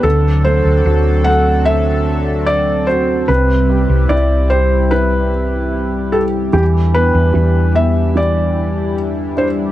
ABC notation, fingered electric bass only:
X:1
M:4/4
L:1/16
Q:1/4=74
K:Em
V:1 name="Fingered electric bass" clef=bass
D,,3 D,, D,,12 | C,,3 C,, C,,12 | E,,3 E,, E,,12 |]